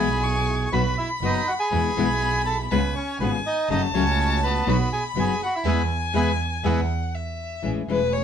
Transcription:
Already playing: bandoneon G#4 G#5, violin B5
0.00 double bass B1, string section B3 E4 G#4
0.23 violin C#6
0.66 violin C#6
0.71 double bass B1, nylon-string guitar B2 F#3 B3 D#4 F#4, string section B3 D#4 F#4, bandoneon B4 B5, violin B5
0.98 bandoneon E4 E5
1.21 double bass F#1, nylon-string guitar B2 F#3 B3 D#4 F#4, string section B3 D#4 F#4
1.25 bandoneon D#4 D#5
1.48 bandoneon F#4 F#5
1.60 bandoneon G#4 G#5
1.71 double bass E2, nylon-string guitar B2 E3 G#3 B3 E4, string section B3 E4 G#4, violin B5
1.97 double bass B1, nylon-string guitar B2 E3 G#3 B3 E4, string section B3 E4 G#4
2.46 bandoneon A4 A5
2.70 double bass C#2, nylon-string guitar C#3 G#3 B3 F4 G#4, string section B3 C#4 F4, bandoneon B4 B5, violin G#5
2.95 bandoneon C#4 C#5
3.19 double bass G#1, nylon-string guitar C#3 G#3 B3 F4 G#4, string section B3 C#4 F4, bandoneon B3 B4, violin G#5
3.47 bandoneon D#4 D#5
3.69 double bass F#1, nylon-string guitar C#3 F#3 A3 C#4 F#4, string section A3 C#4 F#4, bandoneon D#4 D#5, violin A5
3.93 double bass C#2, nylon-string guitar C#3 F#3 A3 C#4 F#4, string section A3 C#4 F#4, bandoneon C#4 C#5
4.43 bandoneon B3 B4
4.66 double bass B1, nylon-string guitar B2 F#3 B3 D#4 F#4, string section B3 D#4 F#4, violin B5
4.93 bandoneon G#4 G#5
5.15 double bass F#1, nylon-string guitar B2 F#3 B3 D#4 F#4, string section B3 D#4 F#4
5.19 bandoneon G#4 G#5
5.43 bandoneon F#4 F#5
5.55 bandoneon E4 E5
5.65 double bass E2, nylon-string guitar E3 G#3 B3, string section B3 E4 G#4, bandoneon G#4 B4 E5, violin G#5
6.13 double bass E2, nylon-string guitar E3 G#3 B3, string section B3 E4 G#4, bandoneon G#4 B4 E5
6.64 double bass E2, nylon-string guitar E3 G#3 B3, string section B3 E4 G#4, bandoneon G#4 B4 E5, violin F#5
7.15 violin E5
7.62 double bass A1, nylon-string guitar E3 G#3 C#4 E4, string section A3 C#4 G#4
7.88 double bass E1, nylon-string guitar E3 G#3 C#4 E4, string section A3 C#4 G#4, violin B4
8.13 violin C#5

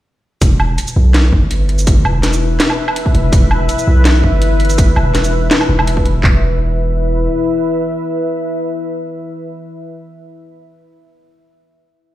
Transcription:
0.41 808-style bass E1, ambient pad E4 B4 E5, kick, closed hi-hat, shaker
0.60 low woodblock
0.78 closed hi-hat, shaker
0.88 shaker
0.96 808-style bass B1
1.14 snare, closed hi-hat
1.32 808-style bass G1, kick
1.51 closed hi-hat
1.69 closed hi-hat
1.79 shaker
1.87 kick, closed hi-hat, shaker
2.05 808-style bass E1, low woodblock
2.23 snare, closed hi-hat, shaker
2.33 shaker
2.60 snare, closed hi-hat
2.70 low woodblock
2.88 low woodblock
2.96 closed hi-hat
3.06 kick
3.15 808-style bass E1, closed hi-hat
3.32 808-style bass E1, kick, closed hi-hat, shaker
3.51 low woodblock
3.69 closed hi-hat, shaker
3.79 shaker
3.88 808-style bass B1
4.05 snare, closed hi-hat
4.24 808-style bass G1, kick
4.42 closed hi-hat
4.60 closed hi-hat
4.65 closed hi-hat
4.70 closed hi-hat, shaker
4.74 closed hi-hat
4.78 kick, closed hi-hat, shaker
4.96 808-style bass E1, low woodblock
5.15 snare, closed hi-hat, shaker
5.24 shaker
5.51 snare, closed hi-hat
5.61 low woodblock
5.69 808-style bass E1
5.79 low woodblock
5.87 closed hi-hat
5.97 kick
6.05 closed hi-hat
6.24 808-style bass E1, ambient pad E4 B4 E5, kick, clap

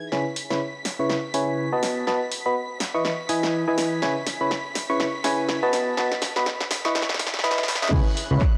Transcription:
Already playing: violin section G#6
0.12 fm electric piano C#3 E4 B4 C#5 G#5, violin section B6, snare
0.36 open hi-hat
0.50 fm electric piano C#3 E4 B4 C#5 B5, snare
0.85 snare, open hi-hat
0.99 fm electric piano C#3 E4 B4 C#5 C#6
1.10 snare
1.34 fm electric piano C#3 E4 B4 C#5 G#5, open hi-hat
1.72 fm electric piano B3 F#4 B4 D#5 A5
1.83 snare, open hi-hat
2.07 fm electric piano B3 F#4 B4 D#5 A5, snare
2.32 open hi-hat
2.46 fm electric piano B3 F#4 B4 D#5 B5
2.80 snare, open hi-hat
2.94 fm electric piano E3 E4 B4 D#5 C#6
3.05 snare
3.29 fm electric piano E3 E4 B4 D#5 G#5, open hi-hat
3.43 snare
3.68 fm electric piano E3 E4 B4 D#5 G#5
3.78 snare, open hi-hat
4.02 fm electric piano C#3 E4 B4 C#5 G#5, snare
4.27 snare, open hi-hat
4.41 fm electric piano C#3 E4 B4 C#5 B5
4.51 snare
4.75 snare, open hi-hat
4.90 fm electric piano C#3 E4 B4 C#5 C#6
5.00 snare
5.24 fm electric piano C#3 E4 B4 C#5 G#5, snare, open hi-hat
5.49 snare
5.63 fm electric piano B3 F#4 B4 D#5 A5
5.73 snare, open hi-hat
5.97 fm electric piano B3 F#4 B4 D#5 A5, snare
6.12 snare
6.22 snare, open hi-hat
6.36 fm electric piano B3 F#4 B4 D#5 B5, snare
6.46 snare
6.61 snare
6.71 snare, open hi-hat
6.85 fm electric piano E3 E4 B4 D#5 C#6, snare
6.95 snare
7.02 snare
7.09 snare
7.14 snare
7.19 snare, open hi-hat
7.27 snare
7.34 snare
7.39 snare
7.44 fm electric piano E3 E4 B4 D#5 B5, snare
7.51 snare
7.58 snare
7.63 snare
7.68 snare, open hi-hat
7.75 snare
7.82 fm electric piano C#3 E4 B4 D#5 B5, snare
7.87 snare
7.92 fm bass C#2, fm electric piano C#3 E4 B4 C#5 G#5, violin section F#6, kick, crash
8.17 open hi-hat
8.31 fm bass C#2, fm electric piano C#3 E4 B4 C#5 B5
8.41 kick, clap

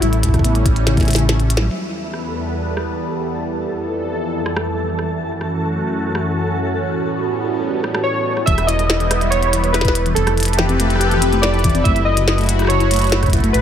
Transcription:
Already playing: analog synth pad A3, synth texture E4 E5
0.01 analog synth bass A1, synth pluck G3, analog synth pad G3 C#4, synth keys E4, closed hi-hat
0.13 closed hi-hat
0.23 kick, closed hi-hat
0.29 kick
0.34 synth pluck C#3, kick, cross-stick, closed hi-hat
0.39 kick
0.45 synth pluck B3, closed hi-hat
0.55 synth pluck G3, closed hi-hat
0.66 kick, closed hi-hat
0.76 closed hi-hat
0.87 synth pluck C#3, snare, closed hi-hat
0.97 synth pluck B3, kick, closed hi-hat
1.00 snare, closed hi-hat
1.03 closed hi-hat
1.05 synth pluck C#3, snare, closed hi-hat
1.08 closed hi-hat
1.11 closed hi-hat
1.13 snare, closed hi-hat
1.16 closed hi-hat
1.18 synth pluck C#3, closed hi-hat
1.29 snare, closed hi-hat
1.40 synth pluck C#3, closed hi-hat
1.50 closed hi-hat
1.57 synth pluck F#3, snare
1.71 analog synth pad E2 E3 G3 B3 B4, synth texture A4 A5, closed hi-hat
2.14 cross-stick
2.77 cross-stick
3.40 analog synth pad F2 A4
4.46 cross-stick
4.57 cross-stick
4.99 cross-stick
5.09 analog synth pad F#2 A3 C#4 F#4
5.41 cross-stick
6.15 cross-stick
6.78 analog synth pad A2 G3 B3
7.84 cross-stick
7.95 cross-stick
8.03 synth keys C#5
8.37 cross-stick
8.46 analog synth bass E1, synth pluck E3, analog synth pad G3 B3 E4, synth texture B4 B5, synth keys E5, kick, closed hi-hat
8.58 synth pluck B4, cross-stick, closed hi-hat
8.67 synth pluck E4, synth keys D#5, closed hi-hat
8.79 closed hi-hat
8.90 snare, closed hi-hat
9.00 synth pluck E3, closed hi-hat
9.11 synth pluck B4, cross-stick, closed hi-hat
9.21 synth pluck E4, closed hi-hat
9.30 synth keys C#5, closed hi-hat
9.43 closed hi-hat
9.53 synth pluck E3, closed hi-hat
9.64 synth pluck B4, closed hi-hat
9.73 synth pluck E4, synth keys B4, cross-stick, snare, closed hi-hat
9.81 kick, snare, closed hi-hat
9.88 snare
9.95 closed hi-hat
10.06 synth pluck E3, closed hi-hat
10.15 analog synth bass F1, analog synth pad F3 C4 E4 G4 A4 B4, synth pluck C4, synth keys A4, closed hi-hat
10.27 synth pluck A3, cross-stick, closed hi-hat
10.38 closed hi-hat
10.40 closed hi-hat
10.43 closed hi-hat
10.45 closed hi-hat
10.48 closed hi-hat
10.53 synth keys G4, closed hi-hat
10.59 synth pluck E3, snare
10.69 synth pluck C4, closed hi-hat
10.80 synth pluck A3, closed hi-hat
10.90 closed hi-hat
10.96 synth keys G4, cross-stick
11.01 closed hi-hat
11.06 synth keys A4
11.11 synth pluck E3, synth keys G4, closed hi-hat
11.22 synth pluck C4, closed hi-hat
11.33 synth pluck A3, closed hi-hat
11.42 synth keys D5, cross-stick, snare, closed hi-hat
11.54 closed hi-hat
11.59 closed hi-hat
11.64 synth pluck E3, kick, closed hi-hat
11.69 closed hi-hat
11.75 synth pluck C4, closed hi-hat
11.84 analog synth bass F#1, analog synth pad A3 F#4, synth pluck A3, synth keys E5, kick, closed hi-hat
11.96 closed hi-hat
12.05 synth keys D#5
12.17 synth pluck C#3, closed hi-hat
12.28 synth pluck E4, snare, closed hi-hat
12.38 synth pluck A3, closed hi-hat
12.41 closed hi-hat
12.44 closed hi-hat
12.46 closed hi-hat
12.49 closed hi-hat
12.59 cross-stick, closed hi-hat
12.62 cross-stick
12.65 cross-stick
12.67 synth pluck C#3, synth keys C#5, cross-stick, closed hi-hat
12.80 synth pluck E4, closed hi-hat
12.91 synth pluck A3, closed hi-hat
12.94 closed hi-hat
12.96 closed hi-hat
12.99 closed hi-hat
13.02 closed hi-hat
13.04 closed hi-hat
13.07 closed hi-hat
13.10 snare, closed hi-hat
13.12 closed hi-hat
13.23 synth pluck C#3, kick, cross-stick, closed hi-hat
13.26 kick, closed hi-hat
13.30 closed hi-hat
13.33 synth pluck E4, kick, closed hi-hat
13.37 kick, closed hi-hat
13.40 closed hi-hat
13.44 synth pluck A3, closed hi-hat
13.53 analog synth bass A1, analog synth pad C#4 G4, synth keys B4, closed hi-hat

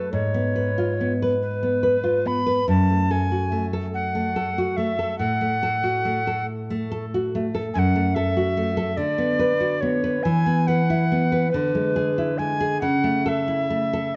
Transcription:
Already playing: nylon-string guitar A4, recorder B4
0.13 nylon-string guitar G#2, recorder C#5
0.34 nylon-string guitar B3
0.56 nylon-string guitar B4
0.78 nylon-string guitar F4
1.01 nylon-string guitar B3
1.22 nylon-string guitar B4
1.42 recorder B4
1.63 nylon-string guitar B3
1.83 nylon-string guitar B4
2.04 nylon-string guitar F4
2.25 nylon-string guitar B3, recorder B5
2.46 nylon-string guitar B4
2.68 nylon-string guitar F#2, recorder A5
2.90 nylon-string guitar A3
3.11 nylon-string guitar A4, recorder G#5
3.32 nylon-string guitar F#4
3.52 nylon-string guitar A3
3.73 nylon-string guitar A4
3.94 recorder F#5
4.15 nylon-string guitar A3
4.36 nylon-string guitar A4
4.58 nylon-string guitar F#4
4.77 nylon-string guitar A3, recorder E5
4.99 nylon-string guitar A4
5.19 nylon-string guitar A2, recorder F#5
5.41 nylon-string guitar A3
5.63 nylon-string guitar A4
5.84 nylon-string guitar F#4
6.05 nylon-string guitar A3
6.27 nylon-string guitar A4
6.70 nylon-string guitar A3
6.92 nylon-string guitar A4
7.14 nylon-string guitar F#4
7.35 nylon-string guitar A3
7.55 nylon-string guitar A4
7.74 nylon-string guitar F#2, recorder G#5
7.79 recorder F#5
7.96 nylon-string guitar A3
8.15 nylon-string guitar A4, recorder E5
8.37 nylon-string guitar F#4
8.57 nylon-string guitar A3
8.77 nylon-string guitar A4
8.97 nylon-string guitar D3, recorder D5
9.18 nylon-string guitar B3
9.39 nylon-string guitar B4
9.60 nylon-string guitar F#4
9.81 nylon-string guitar B3, recorder C#5
10.04 nylon-string guitar B4
10.23 nylon-string guitar E3, recorder G#5
10.46 nylon-string guitar B3
10.67 nylon-string guitar B4, recorder F#5
10.90 nylon-string guitar E4
11.12 nylon-string guitar B3
11.32 nylon-string guitar B4
11.51 nylon-string guitar D3, recorder B4
11.75 nylon-string guitar G#3
11.96 nylon-string guitar G#4
12.18 nylon-string guitar E4
12.38 nylon-string guitar G#3, recorder G#5
12.60 nylon-string guitar G#4
12.81 nylon-string guitar C#3, recorder F#5
13.04 nylon-string guitar A3
13.25 nylon-string guitar A4, recorder E5 F#5
13.48 nylon-string guitar E4
13.70 nylon-string guitar A3
13.93 nylon-string guitar A4

